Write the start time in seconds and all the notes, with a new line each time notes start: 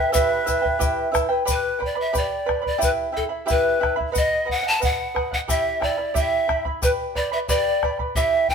Already playing: E4 B4 E5 G5
0.12 E4 G4 B4 E5 G5, bombo low, shaker
0.46 E4 B4 E5 G5, bombo low, shaker
0.62 E4 B4 G5, bombo low
0.79 E4 G4 B4 E5 G5, bombo low, shaker
1.12 E4 B4 E5 G5, bombo rim, bombo low, shaker
1.29 E4 B4 G5
1.45 G4 B4 D5 G5 B5, bombo low, shaker
1.51 B4
1.79 B4 D5 G5 B5, bombo low
1.86 D5
1.95 B4 D5 B5
2.00 E5
2.13 G4 B4 D5 G5 B5, bombo low, shaker
2.18 D5
2.46 B4 D5 G5 B5, bombo rim, bombo low
2.62 B4 D5 B5
2.66 D5, bombo low
2.78 E4 G4 E5 G5 B5, shaker
2.83 B4, bombo low
3.12 E4 E5 G5 B5
3.17 A4, bombo low
3.29 E4 E5 B5
3.46 E4 G4 E5 G5 B5, shaker
3.50 B4, bombo low
3.80 E4 E5 G5 B5, bombo rim, bombo low
3.96 E4 E5 B5
4.00 bombo low
4.12 B4 D#5 F#5, bombo low, shaker
4.18 D#5
4.45 B4 D#5 F#5
4.49 F#5, bombo low
4.63 D#5 F#5
4.68 A5
4.80 B4 D#5 F#5, bombo low, shaker
4.84 F#5
5.14 B4 D#5 F#5, bombo rim, bombo low
5.32 D#5 F#5, bombo low
5.48 E4 G4 E5 G5 B5, bombo low, shaker
5.80 E4 D5 E5 G5 B5, bombo rim, bombo low
5.97 E4 E5 B5
6.14 E4 G4 E5 G5 B5, bombo low, shaker
6.48 E4 E5 G5 B5, bombo rim, bombo low
6.65 E4 E5 B5, bombo low
6.82 G4 B4 D5 G5 B5, bombo low, shaker
7.15 B4 D5 G5 B5, bombo low
7.32 B4 D5 E5 B5
7.49 G4 B4 D5 G5 B5, bombo low, shaker
7.83 B4 D5 G5 B5, bombo rim, bombo low
7.99 B4 D5 B5, bombo low
8.15 E4 G4 E5 G5 B5, bombo low, shaker
8.49 E4 E5 G5 B5, bombo low